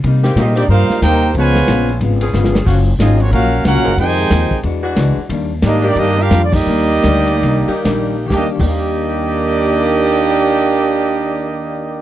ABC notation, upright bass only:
X:1
M:4/4
L:1/8
Q:"Swing" 1/4=182
K:Eb
V:1 name="Upright bass" clef=bass
C,2 B,,2 G,, z E,,2 | _D,,2 B,,,2 A,,,2 G,,,2 | _G,,,2 A,,,2 B,,,2 (3_D,, B,,, G,,, | F,,2 E,, z =E,,2 _D,, z |
E,,2 A,,2 G,,2 F,,2 | E,,2 D,,2 C,, z B,,,2 | E,, E,,6- E,,- | E,,8 |]